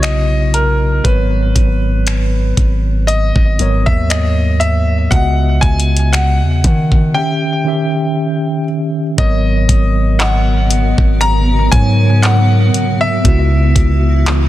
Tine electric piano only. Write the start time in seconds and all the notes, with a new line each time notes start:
Already playing: C#3 B3 E4 F#4 D#5
1.03 G#2 F#3 B3 B4 C#5
3.58 G#2 F#3 B3 A#4
3.62 C#5
5.10 C#3 B3 F#4 E5
5.14 D#5
7.14 D#3 C#4 G4 E5
7.64 D#3 C#4 G4 E5
9.16 G#2 F#3 B3 A#4
9.21 C#5
11.71 G#2 F#3 B3 A#4 C#5
13.23 C#3 B3 E4 F#4
13.27 E5